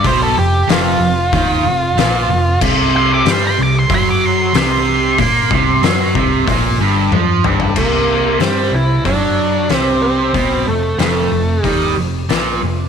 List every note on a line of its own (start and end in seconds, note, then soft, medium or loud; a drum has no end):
0.03 0.34 B1 medium
0.03 0.35 B2 loud
0.03 0.21 C5 loud
0.03 kick loud
0.03 open hi-hat medium
0.23 0.37 A4 medium
0.36 0.66 F1 medium
0.36 0.62 F2 medium
0.36 0.68 G4 medium
0.67 0.98 F1 medium
0.67 0.99 F2 loud
0.67 2.58 F4 loud
0.67 snare loud
0.67 open hi-hat medium
1.00 1.30 F1 medium
1.00 1.26 F2 medium
1.33 1.63 D#2 medium
1.33 1.64 D#3 loud
1.33 kick loud
1.33 open hi-hat medium
1.64 1.94 F1 medium
1.64 1.90 F2 medium
1.95 2.26 A#1 loud
1.95 2.28 A#2 loud
1.95 snare loud
1.95 open hi-hat medium
2.28 2.58 F1 medium
2.28 2.55 F2 medium
2.61 3.22 C2 loud
2.61 3.25 C3 loud
2.61 kick loud
2.61 crash loud
2.97 3.11 C6 loud
3.14 3.31 D6 medium
3.25 3.55 G2 loud
3.25 3.57 G3 loud
3.25 snare loud
3.25 open hi-hat medium
3.31 3.44 C6 medium
3.47 3.60 C6 loud
3.58 3.88 C2 medium
3.58 3.84 C3 medium
3.63 3.76 D6 medium
3.79 3.92 C6 loud
3.90 4.50 F#2 medium
3.90 4.53 F#3 loud
3.90 kick loud
3.90 open hi-hat medium
3.95 4.08 C6 loud
4.11 4.26 D6 loud
4.26 4.55 C6 medium
4.53 5.14 C2 loud
4.53 5.18 C3 loud
4.53 snare loud
4.53 open hi-hat medium
4.57 6.45 C6 loud
5.18 5.48 A#2 loud
5.18 5.50 A#3 loud
5.18 kick loud
5.18 open hi-hat medium
5.51 5.80 C2 loud
5.51 5.82 C3 loud
5.51 kick loud
5.82 6.12 F#2 loud
5.82 6.14 F#3 loud
5.82 snare loud
5.82 open hi-hat medium
6.15 6.45 C2 loud
6.15 6.46 C3 loud
6.15 kick loud
6.47 6.77 A#1 medium
6.47 6.78 A#2 loud
6.47 kick loud
6.47 open hi-hat medium
6.78 7.08 G1 loud
6.78 7.11 G2 loud
7.11 7.41 F2 loud
7.11 7.43 F3 loud
7.11 high tom medium
7.44 7.74 G1 loud
7.44 7.75 G2 loud
7.44 mid tom medium
7.60 floor tom medium
7.76 8.36 C2 medium
7.76 8.39 C3 loud
7.76 8.37 A#3 medium
7.76 kick loud
7.76 crash loud
8.39 8.70 G2 medium
8.39 8.72 G3 loud
8.39 8.74 C4 medium
8.39 snare loud
8.39 open hi-hat medium
8.71 9.02 C2 medium
8.71 8.98 C3 medium
8.71 9.04 E4 medium
9.05 9.66 F#2 medium
9.05 9.69 F#3 loud
9.05 9.75 D4 loud
9.05 kick loud
9.05 open hi-hat soft
9.69 10.30 C2 medium
9.69 10.34 C3 loud
9.69 snare loud
9.69 open hi-hat soft
9.75 10.02 C4 loud
10.02 10.63 C4 medium
10.34 10.65 B1 medium
10.34 10.66 B2 loud
10.34 kick loud
10.34 open hi-hat soft
10.67 10.97 F1 medium
10.67 10.93 F2 medium
10.67 10.98 A3 medium
10.98 11.30 F1 medium
10.98 11.30 F2 loud
10.98 11.66 A3 medium
10.98 snare loud
10.98 open hi-hat medium
11.32 11.62 F1 medium
11.32 11.58 F2 medium
11.64 11.94 D#2 medium
11.64 11.95 D#3 loud
11.64 11.93 G3 medium
11.64 kick medium
11.64 open hi-hat medium
11.97 12.27 F1 medium
11.97 12.22 F2 medium
12.29 12.59 A#1 medium
12.29 12.60 A#2 medium
12.29 snare loud
12.29 open hi-hat medium
12.61 12.89 F1 medium
12.61 12.87 F2 medium